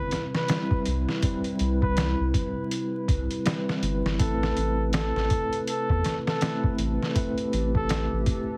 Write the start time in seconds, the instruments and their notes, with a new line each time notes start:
Already playing: analog synth bass G1, ambient pad C3 E4 B4, tine electric piano G3 C4 E4 B4, muted trumpet B4
0.11 snare, closed hi-hat
0.34 muted trumpet B4, snare
0.48 tine electric piano G3 C4 E4 B4, snare, closed hi-hat
0.71 kick
0.86 analog synth bass C2, closed hi-hat
1.09 snare
1.23 tine electric piano G3 C4 E4 B4, kick, closed hi-hat
1.44 closed hi-hat
1.59 analog synth bass C2, closed hi-hat
1.82 muted trumpet B4, kick
1.97 snare, closed hi-hat
2.20 analog synth bass C2
2.34 kick, closed hi-hat
2.71 closed hi-hat
3.08 analog synth bass C2, kick, closed hi-hat
3.31 closed hi-hat
3.45 tine electric piano G3 C4 E4 B4, snare, closed hi-hat
3.69 snare
3.82 analog synth bass G1, closed hi-hat
4.05 analog synth bass G1, snare
4.19 analog synth bass A1, ambient pad C3 A4, tine electric piano A3 C4 E4 B4, muted trumpet A4, kick, closed hi-hat
4.43 snare
4.57 analog synth bass A1, closed hi-hat
4.93 muted trumpet A4, snare, closed hi-hat
5.16 analog synth bass A1, snare
5.30 kick, closed hi-hat
5.53 closed hi-hat
5.67 muted trumpet A4, closed hi-hat
5.89 analog synth bass E2, kick
6.04 snare, closed hi-hat
6.27 muted trumpet A4, snare
6.41 tine electric piano A3 C4 E4 B4, snare, closed hi-hat
6.64 kick
6.78 analog synth bass A1, closed hi-hat
7.03 snare
7.15 tine electric piano A3 C4 E4 B4, ambient pad G4, kick, closed hi-hat
7.38 closed hi-hat
7.53 analog synth bass A1, closed hi-hat
7.75 muted trumpet A4, kick
7.89 snare, closed hi-hat
8.13 analog synth bass A1
8.26 kick, closed hi-hat